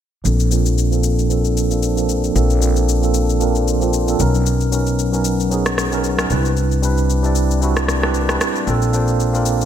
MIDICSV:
0, 0, Header, 1, 4, 480
1, 0, Start_track
1, 0, Key_signature, -2, "major"
1, 0, Tempo, 526316
1, 230, Time_signature, 4, 2, 24, 8
1, 8803, End_track
2, 0, Start_track
2, 0, Title_t, "Tine electric piano"
2, 0, Program_c, 0, 4
2, 218, Note_on_c, 0, 53, 86
2, 225, Note_on_c, 0, 58, 82
2, 232, Note_on_c, 0, 60, 81
2, 240, Note_on_c, 0, 62, 76
2, 247, Note_on_c, 0, 69, 95
2, 394, Control_c, 0, 64, 127
2, 421, Note_off_c, 0, 53, 0
2, 424, Note_off_c, 0, 58, 0
2, 428, Note_off_c, 0, 60, 0
2, 432, Note_off_c, 0, 62, 0
2, 435, Note_off_c, 0, 69, 0
2, 459, Note_on_c, 0, 53, 73
2, 466, Note_on_c, 0, 58, 70
2, 473, Note_on_c, 0, 60, 72
2, 481, Note_on_c, 0, 62, 73
2, 488, Note_on_c, 0, 65, 86
2, 757, Note_off_c, 0, 53, 0
2, 761, Note_off_c, 0, 58, 0
2, 764, Note_off_c, 0, 60, 0
2, 768, Note_off_c, 0, 62, 0
2, 772, Note_off_c, 0, 65, 0
2, 829, Note_on_c, 0, 53, 79
2, 836, Note_on_c, 0, 58, 73
2, 844, Note_on_c, 0, 60, 75
2, 851, Note_on_c, 0, 62, 70
2, 858, Note_on_c, 0, 69, 85
2, 1119, Note_off_c, 0, 53, 0
2, 1122, Note_off_c, 0, 58, 0
2, 1126, Note_off_c, 0, 60, 0
2, 1130, Note_off_c, 0, 62, 0
2, 1133, Note_off_c, 0, 69, 0
2, 1177, Note_on_c, 0, 53, 81
2, 1184, Note_on_c, 0, 58, 72
2, 1192, Note_on_c, 0, 60, 74
2, 1199, Note_on_c, 0, 62, 72
2, 1206, Note_on_c, 0, 69, 91
2, 1476, Note_off_c, 0, 53, 0
2, 1480, Note_off_c, 0, 58, 0
2, 1484, Note_off_c, 0, 60, 0
2, 1487, Note_off_c, 0, 62, 0
2, 1491, Note_off_c, 0, 69, 0
2, 1550, Note_on_c, 0, 53, 80
2, 1558, Note_on_c, 0, 58, 69
2, 1565, Note_on_c, 0, 60, 72
2, 1572, Note_on_c, 0, 62, 75
2, 1579, Note_on_c, 0, 69, 84
2, 1743, Note_off_c, 0, 53, 0
2, 1747, Note_off_c, 0, 58, 0
2, 1751, Note_off_c, 0, 60, 0
2, 1754, Note_off_c, 0, 62, 0
2, 1758, Note_off_c, 0, 69, 0
2, 1790, Note_on_c, 0, 53, 78
2, 1797, Note_on_c, 0, 58, 75
2, 1804, Note_on_c, 0, 60, 70
2, 1812, Note_on_c, 0, 62, 68
2, 1819, Note_on_c, 0, 69, 89
2, 2079, Note_off_c, 0, 53, 0
2, 2083, Note_off_c, 0, 58, 0
2, 2086, Note_off_c, 0, 60, 0
2, 2090, Note_off_c, 0, 62, 0
2, 2094, Note_off_c, 0, 69, 0
2, 2138, Note_on_c, 0, 53, 85
2, 2144, Note_on_c, 0, 58, 81
2, 2151, Note_on_c, 0, 60, 82
2, 2159, Note_on_c, 0, 62, 78
2, 2166, Note_on_c, 0, 69, 100
2, 2341, Note_off_c, 0, 53, 0
2, 2344, Note_off_c, 0, 58, 0
2, 2347, Note_off_c, 0, 60, 0
2, 2351, Note_off_c, 0, 62, 0
2, 2355, Note_off_c, 0, 69, 0
2, 2377, Note_on_c, 0, 53, 75
2, 2384, Note_on_c, 0, 58, 71
2, 2391, Note_on_c, 0, 60, 68
2, 2399, Note_on_c, 0, 62, 70
2, 2406, Note_on_c, 0, 72, 83
2, 2676, Note_off_c, 0, 53, 0
2, 2680, Note_off_c, 0, 58, 0
2, 2683, Note_off_c, 0, 60, 0
2, 2687, Note_off_c, 0, 62, 0
2, 2691, Note_off_c, 0, 72, 0
2, 2748, Note_on_c, 0, 53, 79
2, 2755, Note_on_c, 0, 58, 75
2, 2763, Note_on_c, 0, 60, 69
2, 2770, Note_on_c, 0, 62, 72
2, 2777, Note_on_c, 0, 69, 85
2, 3038, Note_off_c, 0, 53, 0
2, 3042, Note_off_c, 0, 58, 0
2, 3045, Note_off_c, 0, 60, 0
2, 3049, Note_off_c, 0, 62, 0
2, 3053, Note_off_c, 0, 69, 0
2, 3098, Note_on_c, 0, 53, 85
2, 3105, Note_on_c, 0, 58, 75
2, 3112, Note_on_c, 0, 60, 78
2, 3119, Note_on_c, 0, 62, 76
2, 3126, Note_on_c, 0, 70, 94
2, 3397, Note_off_c, 0, 53, 0
2, 3400, Note_off_c, 0, 58, 0
2, 3404, Note_off_c, 0, 60, 0
2, 3408, Note_off_c, 0, 62, 0
2, 3411, Note_off_c, 0, 70, 0
2, 3470, Note_on_c, 0, 53, 77
2, 3477, Note_on_c, 0, 58, 72
2, 3484, Note_on_c, 0, 60, 70
2, 3491, Note_on_c, 0, 62, 74
2, 3499, Note_on_c, 0, 65, 86
2, 3663, Note_off_c, 0, 53, 0
2, 3666, Note_off_c, 0, 58, 0
2, 3670, Note_off_c, 0, 60, 0
2, 3674, Note_off_c, 0, 62, 0
2, 3678, Note_off_c, 0, 65, 0
2, 3710, Note_on_c, 0, 53, 79
2, 3718, Note_on_c, 0, 58, 70
2, 3724, Note_on_c, 0, 60, 71
2, 3731, Note_on_c, 0, 62, 72
2, 3739, Note_on_c, 0, 69, 88
2, 3817, Note_on_c, 0, 54, 89
2, 3824, Note_off_c, 0, 53, 0
2, 3824, Note_on_c, 0, 59, 87
2, 3828, Note_off_c, 0, 58, 0
2, 3831, Note_off_c, 0, 60, 0
2, 3831, Note_on_c, 0, 61, 85
2, 3835, Note_off_c, 0, 62, 0
2, 3838, Note_off_c, 0, 69, 0
2, 3838, Note_on_c, 0, 63, 84
2, 3842, Control_c, 0, 64, 0
2, 3846, Note_on_c, 0, 70, 103
2, 4006, Control_c, 0, 64, 127
2, 4217, Note_off_c, 0, 54, 0
2, 4221, Note_off_c, 0, 59, 0
2, 4224, Note_off_c, 0, 61, 0
2, 4228, Note_off_c, 0, 63, 0
2, 4231, Note_off_c, 0, 70, 0
2, 4298, Note_on_c, 0, 54, 75
2, 4305, Note_on_c, 0, 59, 71
2, 4312, Note_on_c, 0, 61, 71
2, 4320, Note_on_c, 0, 63, 72
2, 4327, Note_on_c, 0, 70, 83
2, 4597, Note_off_c, 0, 54, 0
2, 4600, Note_off_c, 0, 59, 0
2, 4604, Note_off_c, 0, 61, 0
2, 4608, Note_off_c, 0, 63, 0
2, 4611, Note_off_c, 0, 70, 0
2, 4669, Note_on_c, 0, 54, 79
2, 4676, Note_on_c, 0, 59, 71
2, 4684, Note_on_c, 0, 61, 71
2, 4691, Note_on_c, 0, 63, 73
2, 4698, Note_on_c, 0, 70, 86
2, 4959, Note_off_c, 0, 54, 0
2, 4962, Note_off_c, 0, 59, 0
2, 4966, Note_off_c, 0, 61, 0
2, 4970, Note_off_c, 0, 63, 0
2, 4973, Note_off_c, 0, 70, 0
2, 5019, Note_on_c, 0, 54, 81
2, 5026, Note_on_c, 0, 59, 74
2, 5033, Note_on_c, 0, 61, 75
2, 5041, Note_on_c, 0, 63, 76
2, 5048, Note_on_c, 0, 68, 89
2, 5317, Note_off_c, 0, 54, 0
2, 5321, Note_off_c, 0, 59, 0
2, 5325, Note_off_c, 0, 61, 0
2, 5328, Note_off_c, 0, 63, 0
2, 5332, Note_off_c, 0, 68, 0
2, 5390, Note_on_c, 0, 54, 80
2, 5397, Note_on_c, 0, 59, 74
2, 5404, Note_on_c, 0, 61, 75
2, 5411, Note_on_c, 0, 63, 71
2, 5419, Note_on_c, 0, 70, 87
2, 5583, Note_off_c, 0, 54, 0
2, 5587, Note_off_c, 0, 59, 0
2, 5590, Note_off_c, 0, 61, 0
2, 5594, Note_off_c, 0, 63, 0
2, 5597, Note_off_c, 0, 70, 0
2, 5631, Note_on_c, 0, 54, 81
2, 5639, Note_on_c, 0, 59, 72
2, 5645, Note_on_c, 0, 61, 70
2, 5653, Note_on_c, 0, 63, 73
2, 5660, Note_on_c, 0, 70, 88
2, 5739, Note_on_c, 0, 55, 91
2, 5745, Note_off_c, 0, 54, 0
2, 5746, Note_on_c, 0, 60, 86
2, 5748, Note_off_c, 0, 59, 0
2, 5752, Note_off_c, 0, 61, 0
2, 5754, Note_on_c, 0, 62, 86
2, 5755, Note_off_c, 0, 63, 0
2, 5759, Note_off_c, 0, 70, 0
2, 5761, Note_on_c, 0, 64, 83
2, 5763, Control_c, 0, 64, 0
2, 5768, Note_on_c, 0, 71, 99
2, 5901, Control_c, 0, 64, 127
2, 6138, Note_off_c, 0, 55, 0
2, 6142, Note_off_c, 0, 60, 0
2, 6145, Note_off_c, 0, 62, 0
2, 6149, Note_off_c, 0, 64, 0
2, 6153, Note_off_c, 0, 71, 0
2, 6218, Note_on_c, 0, 55, 77
2, 6226, Note_on_c, 0, 60, 71
2, 6233, Note_on_c, 0, 62, 72
2, 6240, Note_on_c, 0, 64, 73
2, 6247, Note_on_c, 0, 71, 83
2, 6517, Note_off_c, 0, 55, 0
2, 6521, Note_off_c, 0, 60, 0
2, 6524, Note_off_c, 0, 62, 0
2, 6528, Note_off_c, 0, 64, 0
2, 6531, Note_off_c, 0, 71, 0
2, 6591, Note_on_c, 0, 55, 78
2, 6598, Note_on_c, 0, 60, 76
2, 6605, Note_on_c, 0, 62, 72
2, 6613, Note_on_c, 0, 64, 74
2, 6620, Note_on_c, 0, 74, 90
2, 6880, Note_off_c, 0, 55, 0
2, 6883, Note_off_c, 0, 60, 0
2, 6887, Note_off_c, 0, 62, 0
2, 6891, Note_off_c, 0, 64, 0
2, 6894, Note_off_c, 0, 74, 0
2, 6940, Note_on_c, 0, 55, 82
2, 6947, Note_on_c, 0, 60, 73
2, 6954, Note_on_c, 0, 62, 74
2, 6961, Note_on_c, 0, 64, 78
2, 6968, Note_on_c, 0, 66, 91
2, 7238, Note_off_c, 0, 55, 0
2, 7241, Note_off_c, 0, 60, 0
2, 7245, Note_off_c, 0, 62, 0
2, 7248, Note_off_c, 0, 64, 0
2, 7252, Note_off_c, 0, 66, 0
2, 7310, Note_on_c, 0, 55, 81
2, 7317, Note_on_c, 0, 60, 72
2, 7325, Note_on_c, 0, 62, 73
2, 7332, Note_on_c, 0, 64, 71
2, 7339, Note_on_c, 0, 71, 88
2, 7503, Note_off_c, 0, 55, 0
2, 7507, Note_off_c, 0, 60, 0
2, 7511, Note_off_c, 0, 62, 0
2, 7514, Note_off_c, 0, 64, 0
2, 7518, Note_off_c, 0, 71, 0
2, 7551, Note_on_c, 0, 55, 78
2, 7558, Note_on_c, 0, 60, 74
2, 7565, Note_on_c, 0, 62, 74
2, 7572, Note_on_c, 0, 64, 69
2, 7580, Note_on_c, 0, 71, 83
2, 7840, Note_off_c, 0, 55, 0
2, 7843, Note_off_c, 0, 60, 0
2, 7847, Note_off_c, 0, 62, 0
2, 7850, Note_off_c, 0, 64, 0
2, 7854, Note_off_c, 0, 71, 0
2, 7898, Note_on_c, 0, 58, 87
2, 7906, Note_on_c, 0, 60, 79
2, 7913, Note_on_c, 0, 62, 81
2, 7920, Note_on_c, 0, 65, 78
2, 7923, Control_c, 0, 64, 0
2, 7927, Note_on_c, 0, 69, 97
2, 8072, Control_c, 0, 64, 127
2, 8101, Note_off_c, 0, 58, 0
2, 8105, Note_off_c, 0, 60, 0
2, 8108, Note_off_c, 0, 62, 0
2, 8112, Note_off_c, 0, 65, 0
2, 8115, Note_off_c, 0, 69, 0
2, 8138, Note_on_c, 0, 58, 77
2, 8146, Note_on_c, 0, 60, 74
2, 8153, Note_on_c, 0, 62, 74
2, 8160, Note_on_c, 0, 65, 71
2, 8167, Note_on_c, 0, 72, 82
2, 8437, Note_off_c, 0, 58, 0
2, 8441, Note_off_c, 0, 60, 0
2, 8444, Note_off_c, 0, 62, 0
2, 8448, Note_off_c, 0, 65, 0
2, 8451, Note_off_c, 0, 72, 0
2, 8510, Note_on_c, 0, 58, 79
2, 8516, Note_on_c, 0, 60, 72
2, 8523, Note_on_c, 0, 62, 70
2, 8531, Note_on_c, 0, 65, 71
2, 8538, Note_on_c, 0, 70, 85
2, 8799, Note_off_c, 0, 58, 0
2, 8802, Note_off_c, 0, 60, 0
2, 8803, Note_off_c, 0, 62, 0
2, 8803, Note_off_c, 0, 65, 0
2, 8803, Note_off_c, 0, 70, 0
2, 8803, End_track
3, 0, Start_track
3, 0, Title_t, "Upright bass"
3, 0, Program_c, 1, 32
3, 230, Note_on_c, 1, 34, 80
3, 2114, Note_off_c, 1, 34, 0
3, 2149, Note_on_c, 1, 34, 81
3, 3796, Note_off_c, 1, 34, 0
3, 3830, Note_on_c, 1, 35, 78
3, 5713, Note_off_c, 1, 35, 0
3, 5750, Note_on_c, 1, 36, 79
3, 7634, Note_off_c, 1, 36, 0
3, 7910, Note_on_c, 1, 34, 80
3, 8803, Note_off_c, 1, 34, 0
3, 8803, End_track
4, 0, Start_track
4, 0, Title_t, "Drums"
4, 229, Note_on_c, 9, 82, 69
4, 320, Note_off_c, 9, 82, 0
4, 362, Note_on_c, 9, 82, 54
4, 453, Note_off_c, 9, 82, 0
4, 467, Note_on_c, 9, 82, 87
4, 558, Note_off_c, 9, 82, 0
4, 598, Note_on_c, 9, 82, 57
4, 689, Note_off_c, 9, 82, 0
4, 710, Note_on_c, 9, 82, 74
4, 801, Note_off_c, 9, 82, 0
4, 842, Note_on_c, 9, 82, 52
4, 933, Note_off_c, 9, 82, 0
4, 942, Note_on_c, 9, 82, 91
4, 1033, Note_off_c, 9, 82, 0
4, 1084, Note_on_c, 9, 82, 52
4, 1175, Note_off_c, 9, 82, 0
4, 1187, Note_on_c, 9, 82, 66
4, 1279, Note_off_c, 9, 82, 0
4, 1318, Note_on_c, 9, 82, 53
4, 1409, Note_off_c, 9, 82, 0
4, 1433, Note_on_c, 9, 82, 81
4, 1524, Note_off_c, 9, 82, 0
4, 1559, Note_on_c, 9, 82, 52
4, 1650, Note_off_c, 9, 82, 0
4, 1665, Note_on_c, 9, 82, 77
4, 1757, Note_off_c, 9, 82, 0
4, 1801, Note_on_c, 9, 82, 57
4, 1892, Note_off_c, 9, 82, 0
4, 1906, Note_on_c, 9, 82, 77
4, 1997, Note_off_c, 9, 82, 0
4, 2043, Note_on_c, 9, 82, 53
4, 2134, Note_off_c, 9, 82, 0
4, 2149, Note_on_c, 9, 82, 70
4, 2240, Note_off_c, 9, 82, 0
4, 2282, Note_on_c, 9, 82, 51
4, 2373, Note_off_c, 9, 82, 0
4, 2388, Note_on_c, 9, 82, 83
4, 2479, Note_off_c, 9, 82, 0
4, 2519, Note_on_c, 9, 82, 54
4, 2610, Note_off_c, 9, 82, 0
4, 2631, Note_on_c, 9, 82, 76
4, 2722, Note_off_c, 9, 82, 0
4, 2763, Note_on_c, 9, 82, 48
4, 2854, Note_off_c, 9, 82, 0
4, 2863, Note_on_c, 9, 82, 92
4, 2954, Note_off_c, 9, 82, 0
4, 3005, Note_on_c, 9, 82, 53
4, 3096, Note_off_c, 9, 82, 0
4, 3108, Note_on_c, 9, 82, 69
4, 3199, Note_off_c, 9, 82, 0
4, 3238, Note_on_c, 9, 82, 53
4, 3330, Note_off_c, 9, 82, 0
4, 3353, Note_on_c, 9, 82, 78
4, 3444, Note_off_c, 9, 82, 0
4, 3478, Note_on_c, 9, 82, 51
4, 3569, Note_off_c, 9, 82, 0
4, 3585, Note_on_c, 9, 82, 77
4, 3676, Note_off_c, 9, 82, 0
4, 3720, Note_on_c, 9, 82, 55
4, 3811, Note_off_c, 9, 82, 0
4, 3824, Note_on_c, 9, 82, 76
4, 3916, Note_off_c, 9, 82, 0
4, 3962, Note_on_c, 9, 82, 52
4, 4053, Note_off_c, 9, 82, 0
4, 4068, Note_on_c, 9, 82, 72
4, 4159, Note_off_c, 9, 82, 0
4, 4202, Note_on_c, 9, 82, 53
4, 4293, Note_off_c, 9, 82, 0
4, 4307, Note_on_c, 9, 82, 86
4, 4398, Note_off_c, 9, 82, 0
4, 4438, Note_on_c, 9, 82, 57
4, 4529, Note_off_c, 9, 82, 0
4, 4550, Note_on_c, 9, 82, 74
4, 4642, Note_off_c, 9, 82, 0
4, 4682, Note_on_c, 9, 82, 50
4, 4773, Note_off_c, 9, 82, 0
4, 4783, Note_on_c, 9, 82, 88
4, 4874, Note_off_c, 9, 82, 0
4, 4925, Note_on_c, 9, 82, 54
4, 5016, Note_off_c, 9, 82, 0
4, 5028, Note_on_c, 9, 82, 69
4, 5120, Note_off_c, 9, 82, 0
4, 5159, Note_on_c, 9, 82, 53
4, 5162, Note_on_c, 9, 37, 84
4, 5250, Note_off_c, 9, 82, 0
4, 5253, Note_off_c, 9, 37, 0
4, 5270, Note_on_c, 9, 37, 88
4, 5275, Note_on_c, 9, 82, 82
4, 5362, Note_off_c, 9, 37, 0
4, 5366, Note_off_c, 9, 82, 0
4, 5400, Note_on_c, 9, 82, 52
4, 5491, Note_off_c, 9, 82, 0
4, 5507, Note_on_c, 9, 82, 78
4, 5598, Note_off_c, 9, 82, 0
4, 5641, Note_on_c, 9, 37, 97
4, 5643, Note_on_c, 9, 82, 57
4, 5732, Note_off_c, 9, 37, 0
4, 5734, Note_off_c, 9, 82, 0
4, 5747, Note_on_c, 9, 82, 79
4, 5838, Note_off_c, 9, 82, 0
4, 5884, Note_on_c, 9, 82, 50
4, 5975, Note_off_c, 9, 82, 0
4, 5990, Note_on_c, 9, 82, 69
4, 6081, Note_off_c, 9, 82, 0
4, 6123, Note_on_c, 9, 82, 55
4, 6214, Note_off_c, 9, 82, 0
4, 6229, Note_on_c, 9, 82, 85
4, 6320, Note_off_c, 9, 82, 0
4, 6360, Note_on_c, 9, 82, 55
4, 6452, Note_off_c, 9, 82, 0
4, 6473, Note_on_c, 9, 82, 72
4, 6564, Note_off_c, 9, 82, 0
4, 6604, Note_on_c, 9, 82, 49
4, 6696, Note_off_c, 9, 82, 0
4, 6704, Note_on_c, 9, 82, 94
4, 6795, Note_off_c, 9, 82, 0
4, 6847, Note_on_c, 9, 82, 56
4, 6938, Note_off_c, 9, 82, 0
4, 6949, Note_on_c, 9, 82, 71
4, 7041, Note_off_c, 9, 82, 0
4, 7080, Note_on_c, 9, 82, 53
4, 7083, Note_on_c, 9, 37, 86
4, 7171, Note_off_c, 9, 82, 0
4, 7174, Note_off_c, 9, 37, 0
4, 7191, Note_on_c, 9, 37, 86
4, 7195, Note_on_c, 9, 82, 78
4, 7282, Note_off_c, 9, 37, 0
4, 7286, Note_off_c, 9, 82, 0
4, 7327, Note_on_c, 9, 37, 89
4, 7418, Note_off_c, 9, 37, 0
4, 7427, Note_on_c, 9, 82, 79
4, 7518, Note_off_c, 9, 82, 0
4, 7560, Note_on_c, 9, 37, 96
4, 7562, Note_on_c, 9, 82, 57
4, 7651, Note_off_c, 9, 37, 0
4, 7653, Note_off_c, 9, 82, 0
4, 7666, Note_on_c, 9, 82, 75
4, 7670, Note_on_c, 9, 37, 99
4, 7757, Note_off_c, 9, 82, 0
4, 7761, Note_off_c, 9, 37, 0
4, 7803, Note_on_c, 9, 82, 53
4, 7894, Note_off_c, 9, 82, 0
4, 7908, Note_on_c, 9, 82, 71
4, 8000, Note_off_c, 9, 82, 0
4, 8042, Note_on_c, 9, 82, 54
4, 8133, Note_off_c, 9, 82, 0
4, 8148, Note_on_c, 9, 82, 81
4, 8239, Note_off_c, 9, 82, 0
4, 8278, Note_on_c, 9, 82, 54
4, 8370, Note_off_c, 9, 82, 0
4, 8390, Note_on_c, 9, 82, 76
4, 8482, Note_off_c, 9, 82, 0
4, 8523, Note_on_c, 9, 82, 52
4, 8614, Note_off_c, 9, 82, 0
4, 8623, Note_on_c, 9, 82, 96
4, 8714, Note_off_c, 9, 82, 0
4, 8765, Note_on_c, 9, 82, 55
4, 8803, Note_off_c, 9, 82, 0
4, 8803, End_track
0, 0, End_of_file